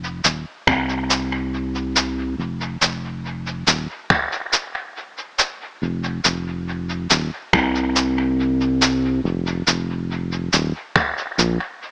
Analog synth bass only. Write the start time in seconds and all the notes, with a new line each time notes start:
Already playing: F1
0.24 D#1
0.67 C2
2.38 F1
2.81 F1
3.67 D#1
5.82 F1
6.25 F1
7.10 D#1
7.53 C2
9.24 F1
9.67 F1
10.53 D#1
11.38 A#1